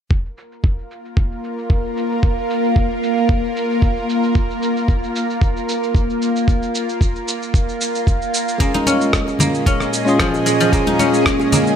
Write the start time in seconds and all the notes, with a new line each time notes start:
0.10 A#3 F4 A#4, kick, shaker
0.25 shaker
0.38 shaker
0.52 shaker
0.64 kick, shaker
0.79 shaker
0.91 shaker
1.05 shaker
1.17 kick, shaker
1.32 shaker
1.44 shaker
1.58 shaker
1.70 kick, shaker
1.85 shaker
1.97 shaker
2.11 shaker
2.23 kick, shaker
2.38 shaker
2.50 shaker
2.64 shaker
2.76 kick, shaker
2.91 shaker
3.03 shaker
3.17 shaker
3.29 kick, shaker
3.44 shaker
3.56 shaker
3.71 shaker
3.82 kick, shaker
3.97 shaker
4.09 shaker
4.24 shaker
4.35 kick, shaker
4.50 shaker
4.62 shaker
4.77 shaker
4.88 kick, shaker
5.03 shaker
5.16 shaker
5.30 shaker
5.41 kick, shaker
5.57 shaker
5.69 shaker
5.83 shaker
5.95 kick, shaker
6.10 shaker
6.22 shaker
6.36 shaker
6.48 kick, shaker
6.63 shaker
6.75 shaker
6.89 shaker
7.01 kick, shaker
7.16 shaker
7.28 shaker
7.42 shaker
7.54 kick, shaker
7.69 shaker
7.81 shaker
7.95 shaker
8.07 kick, shaker
8.22 shaker
8.34 shaker
8.48 shaker
8.58 A#2 G#3 A#3 C#4 F4 G#4 D#5, kick, shaker
8.74 D#4, high conga, shaker
8.87 C#4, high conga, shaker
9.01 shaker
9.13 kick, cross-stick, shaker
9.28 high bongo, shaker
9.39 A#3, high conga, low conga, shaker
9.54 shaker
9.66 C#4, kick, shaker
9.80 cross-stick, shaker
9.93 high bongo, shaker
10.05 G#3 C#4 F4, shaker
10.09 G#4
10.20 F3, kick, cross-stick, shaker
10.34 high bongo, shaker
10.46 G#3, shaker
10.60 F3, shaker
10.70 G#3 A#3 C#4 F4, kick, shaker
10.74 G#4
10.87 D#4, high conga, shaker
10.99 C#4, high conga, shaker
11.14 shaker
11.26 kick, cross-stick, shaker
11.40 high bongo, shaker
11.52 A#3, high conga, low conga, shaker
11.67 shaker